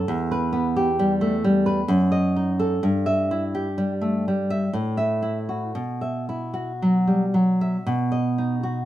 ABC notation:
X:1
M:3/4
L:1/16
Q:1/4=62
K:Em
V:1 name="Nylon-string guitar"
E,, B B, G G, A, G, B F,, ^d ^D A | G,, e E G G, A, G, e A,, e E F | B,, e E F F, G, F, e B,, ^d ^D F |]